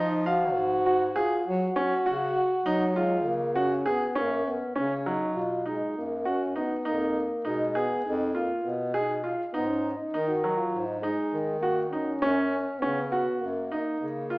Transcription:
Already playing: F3 D#4
0.00 D#4
0.26 F#4 F5
0.56 G#2
0.86 F#4
1.16 F4 G#4
1.46 F#3 F#4
1.76 C#4
2.06 C#3 F#4
2.66 F#3 D#4
2.96 G#3 F4
3.25 C#3 A#3
3.56 C#4 F#4
3.86 B3 G#4
4.15 F#2 A#3 C#4
4.47 B3
4.76 C#3 C#4
5.06 F#3 D#4
5.36 B2 F4
5.66 G#3 D#4
5.96 F#2 A#3
6.25 C#4 F#4
6.56 B3 D#4
6.85 F2 A#3 D#4
7.45 B2 G#3 D#4
7.75 B3 G#4
8.04 F2 D#4
8.35 A#3 F4
8.64 B2 B3
8.94 D#4 G#4
9.24 F4
9.53 G#2 B3 D#4
9.68 C#4
9.97 D#4
10.13 D#3 D#4
10.28 F#4
10.44 F#3
10.57 F4
10.73 G#2
10.87 D#4
11.02 G#3 D#4
11.32 D#3
11.60 A#3 F#4
11.91 C#4 D#4
12.22 F#2 C#4
12.79 C#3 B3 C#4
13.09 B3 F#4
13.40 F#2 A#3
13.72 D#4
14.00 C#3 A#3
14.30 F4

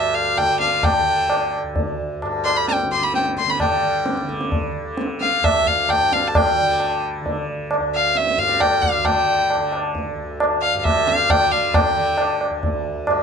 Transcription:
Already playing: D2 G2 D3 E5
0.14 F5
0.37 D3 G5, tabla na, tabla ge
0.60 F5, tabla te
0.83 G5, tabla na, tabla ge
1.01 D3
1.30 tabla na
1.53 tabla na
1.63 D2
1.76 tabla tin, tabla ge
2.22 G2, tabla na
2.45 C6, tabla na
2.57 B5
2.68 G5, tabla te
2.80 tabla te
2.84 D3
2.91 C6, tabla ke
3.02 B5, tabla te
3.14 G5, tabla te
3.25 tabla te
3.37 C6, tabla ke
3.44 D3, tabla te
3.50 B5
3.60 G2 G5, tabla na, tabla ge
4.06 tabla te
4.17 tabla te
4.22 D3
4.29 tabla ke
4.41 tabla te
4.52 tabla tin, tabla ge
4.83 D3
4.97 tabla te
5.21 F5, tabla te
5.41 D2 E5, tabla na, tabla ge
5.66 F5, tabla ge
5.89 G5, tabla na, tabla ge
6.02 G2
6.12 F5, tabla te
6.27 A5
6.35 G5, tabla na, tabla ge
6.62 D3
6.80 tabla na
7.21 D3
7.26 tabla tin, tabla ge
7.71 tabla na
7.79 D2
7.95 F5
8.15 E5, tabla te
8.27 tabla te
8.38 G2 F5, tabla ke
8.49 tabla te
8.60 G5, tabla na, tabla ge
8.82 F5, tabla ge
8.96 D3
9.05 G5, tabla na, tabla ge
9.50 tabla na
9.57 D3
9.72 tabla na
9.95 tabla tin, tabla ge
10.15 D2
10.40 tabla na
10.62 F5
10.75 G2
10.79 F5
10.84 E5, tabla na, tabla ge
11.07 F5, tabla te
11.30 D3 G5, tabla na, tabla ge
11.51 F5, tabla ge
11.74 G5, tabla na, tabla ge
11.91 D3
12.18 tabla na
12.41 tabla na
12.50 D2
12.63 tabla tin, tabla ge
13.07 G2, tabla na

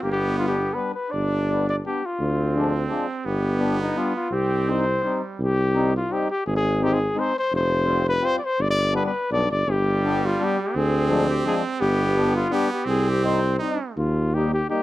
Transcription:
0.02 G1 B3 G4
0.12 G4
0.38 G3 B3 D4 F4
0.48 G4
0.74 G3 B3 D4 B4
0.94 B4
1.10 G1 D4 D5
1.49 G3 B3 D4
1.69 D5
1.85 G3 B3 D4 G4
2.06 F4
2.19 D2 C4
2.55 F3 G#3 D4
2.89 F3 G#3 D4
3.25 G1 B3 G4
3.59 G3 B3 D4
3.81 D#4
3.96 G3 B3 D4 F4
4.15 F4
4.31 C2 C4 G4
4.68 G3 C4 D#4 C5
5.03 G3 C4 D#4
5.40 C2 G4
5.75 G3 C4 D#4
5.97 F4
6.10 G3 C4 D#4 G4
6.30 G4
6.47 G#1 G#4
6.56 G#4
6.82 G#3 C4 D#4 G4
6.93 G#4
7.15 G#3 C4 D#4
7.19 C5
7.38 C5
7.52 F1 C5
7.85 G3 C4 F4
8.08 B4
8.21 G3 C4 F4
8.26 C5
8.38 D5
8.44 C5
8.58 G1 D5
8.71 D5
8.93 G3 B3 D4 B4
9.06 B4
9.31 B1 G3 B3 D4 D5
9.50 G1 D5
9.67 G1 G3 G4
10.04 G3 B3 D4
10.26 F4
10.40 G3 B3 D4
10.44 G4
10.62 G4
10.74 D2 C4 G#4
11.09 F3 G#3 D4
11.29 G4
11.45 F3 G#3 D4 G#4
11.80 G1 B3 G4
12.16 G3 B3 D4
12.36 F4
12.50 G3 B3 D4 G4
12.72 G4
12.85 C2 C4
12.89 G#4
13.09 G4
13.23 G3 C4 D#4 C5
13.59 G3 C4 D#4
13.97 D#2 F4
14.34 G3 A#3 D#4 G4
14.53 G4
14.70 G3 A#3 D#4 G4

